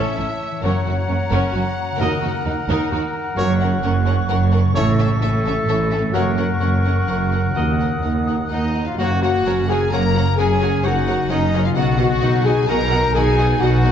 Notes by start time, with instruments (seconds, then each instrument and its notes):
Already playing: harp A2 A3 C#4 E4 A4 E5, viola section C#4, violin section A4 E5, clarinet C#5, oboe E5, flute section A5
0.07 harp C#5
0.16 double bass section A1, cello section A2, viola section C#4, violin section E4, harp A4
0.29 harp E4
0.40 harp A3
0.51 harp E3
0.62 double bass section F#1, harp F#2, cello section F#2, french horn section A#3 F#4, viola section C#4, violin section A#4 F#5, clarinet C#5, trumpet C#5, oboe F#5, flute section A#5
0.75 harp A#3
0.85 double bass section F#1, cello section F#2, harp C#4, viola section C#4, violin section F#4
0.98 harp F#4
1.08 double bass section F#1, cello section F#2, violin section C#4, viola section C#4, harp A#4
1.21 harp C#5
1.30 double bass section F#1, cello section F#2, viola section C#4, violin section A#4, harp F#5
1.43 harp C#5
1.52 double bass section F#1, cello section F#2, viola section C#4, violin section F#4, harp A#4
1.66 harp F#4
1.79 harp A#3
1.90 harp C#3
1.98 double bass section D#2, cello section D#2, harp D#3, french horn section A#3 F#4, viola section D#4, violin section A#4, clarinet A#4, trumpet D#5
2.13 harp D#4
2.22 double bass section D#2, cello section D#2, viola section D#4, violin section F#4, harp F#4
2.37 harp A#4
2.45 cello section D#2, double bass section D#2, violin section D#4, viola section D#4, harp D#5
2.59 harp F#5
2.68 double bass section D#2, cello section D#2, viola section D#4, violin section A#4, harp A#5
2.81 harp F#5
2.90 double bass section D#2, cello section D#2, viola section D#4, violin section F#4, harp D#5
3.04 harp A#4
3.15 harp D#4
3.27 harp A#3
3.36 double bass section F#1, cello section F#2, harp F#2, french horn section A#3 F#4, viola section C#4, violin section A#4 F#5, trumpet C#5, oboe F#5, flute section C#6
3.49 harp A#3
3.61 harp C#4, viola section C#4, violin section A#4 F#5
3.73 harp F#4
3.82 double bass section F#1, cello section F#2, viola section C#4, violin section A#4 F#5, harp A#4
3.96 harp C#5
4.06 viola section C#4, violin section A#4 F#5, harp F#5
4.19 harp C#5
4.29 double bass section F#1, cello section F#2, viola section C#4, violin section A#4 F#5, harp A#4
4.43 harp F#4
4.52 harp A#3, viola section C#4, violin section A#4 F#5
4.65 harp C#3
4.74 double bass section A1, cello section A2, harp A2, french horn section A3 E4, viola section C#4, clarinet A4, violin section A4 E5, trumpet C#5, oboe E5
4.99 viola section C#4, harp C#4, violin section A4 E5
5.11 harp E4
5.21 double bass section A1, cello section A2, viola section C#4, harp A4, violin section A4 E5
5.34 harp C#5
5.45 viola section C#4, violin section A4 E5, harp E5
5.57 harp C#5
5.67 double bass section A1, cello section A2, viola section C#4, violin section A4 E5, harp A4
5.79 harp E4
5.90 harp A3, viola section C#4, violin section A4 E5
6.02 harp E3
6.12 double bass section F#1, harp F#2, cello section F#2, french horn section A#3 F#4, viola section C#4, violin section A#4 F#5, clarinet A#4, trumpet C#5, oboe F#5, flute section C#6
6.25 harp A#3
6.37 harp C#4, viola section C#4, violin section A#4 F#5
6.48 harp F#4
6.60 double bass section F#1, cello section F#2, viola section C#4, harp A#4, violin section A#4 F#5
6.72 harp C#5
6.83 viola section C#4, violin section A#4 F#5, harp F#5
6.95 harp C#5
7.07 double bass section F#1, cello section F#2, viola section C#4, harp A#4, violin section A#4 F#5
7.19 harp F#4
7.31 harp A#3, viola section C#4, violin section A#4 F#5
7.43 harp C#3
7.54 cello section D#2, double bass section D#2, harp D#3, french horn section A#3 F#4, viola section D#4, violin section A#4 F#5, trumpet D#5, flute section D#6
7.68 harp D#4
7.79 viola section D#4, harp F#4, violin section A#4 F#5
8.02 cello section D#2, double bass section D#2, viola section D#4, violin section A#4 F#5
8.16 harp F#5
8.27 viola section D#4, violin section A#4 F#5, harp A#5
8.40 harp F#5
8.49 cello section D#2, double bass section D#2, french horn section D#4, viola section D#4, trumpet D#4, violin section A#4 D#5 F#5, flute section D#5, harp D#5
8.64 harp A#4
8.75 viola section D#4, violin section A#4 F#5
8.86 harp A#3, french horn section F4, trumpet F4, violin section F5, flute section F5
8.97 double bass section F#1, cello section F#2, harp F#2, viola section F#3 A#4, clarinet A#3, french horn section F#4, trumpet F#4, violin section C#5 F#5, flute section F#5
9.16 harp A#3
9.21 viola section F#3 A#4, french horn section F#4, trumpet F#4, violin section C#5 F#5, flute section F#5
9.45 double bass section F#1, cello section F#2, viola section F#3 A#4, clarinet C#4, harp C#4, violin section C#5 F#5
9.62 harp C#3
9.68 viola section F#3 A#4, french horn section G#4, trumpet G#4, violin section C#5 F#5 G#5, flute section G#5
9.77 harp C#4
9.90 double bass section F#1, cello section F#2, viola section F#3 A#4, harp A#3, clarinet A#3, french horn section A#4, trumpet A#4, violin section C#5 F#5 A#5, flute section A#5
10.07 harp C#3
10.15 viola section F#3 A#4, violin section C#5 F#5
10.23 harp C#4
10.36 double bass section F#1, harp F#2, cello section F#2, viola section F#3 A#4, clarinet C#4, french horn section G#4, trumpet G#4, violin section C#5 F#5 G#5, flute section G#5
10.54 harp A#3
10.61 viola section F#3 A#4, violin section C#5 F#5
10.70 harp F#4
10.82 double bass section F#1, cello section F#2, viola section F#3 A#4, clarinet D#4, french horn section F#4, trumpet F#4, violin section C#5 F#5, flute section F#5
10.99 harp C#3
11.07 viola section F#3 A#4, violin section C#5 F#5
11.15 harp C#4
11.29 double bass section F#1, cello section F#2, viola section F#3 A#4, harp A#3, clarinet C#4, trumpet D#4, french horn section D#4, violin section C#5 D#5 F#5, flute section D#5
11.53 viola section F#3 A#4, violin section C#5 F#5
11.62 harp C#4, trumpet F4, french horn section F4, flute section F5, violin section F5
11.75 double bass section B1, harp B2, cello section B2, viola section D#3 F#4, clarinet B3, french horn section F#4, trumpet F#4, violin section D#5 F#5, flute section F#5
11.93 harp B3
11.97 viola section D#3 F#4, french horn section F#4, trumpet F#4, violin section D#5 F#5, flute section F#5
12.22 double bass section B1, cello section B2, viola section D#3 F#4, clarinet D#4, violin section D#5 F#5
12.39 harp F#3
12.43 viola section D#3 F#4, french horn section G#4, trumpet G#4, violin section D#5 F#5 G#5, flute section G#5
12.54 harp D#4
12.68 double bass section B1, cello section B2, viola section D#3 F#4, harp B3, clarinet D#4, french horn section A#4, trumpet A#4, violin section D#5 F#5 A#5, flute section A#5
12.85 harp F#3
12.91 viola section D#3 F#4, violin section D#5 F#5
13.00 harp D#4
13.13 double bass section B1, cello section B2, harp B2, french horn section G#4, trumpet G#4, violin section D#5 F#5 G#5, flute section G#5
13.17 viola section D#3 F#4
13.31 harp B3
13.38 viola section D#3 F#4, violin section D#5 F#5
13.46 harp F#4
13.60 double bass section B1, cello section B2, viola section D#3 F#4, harp D#4, french horn section F#4, trumpet F#4, violin section D#5 F#5, flute section F#5
13.77 harp F#3
13.84 viola section D#3 F#4, violin section D#5 F#5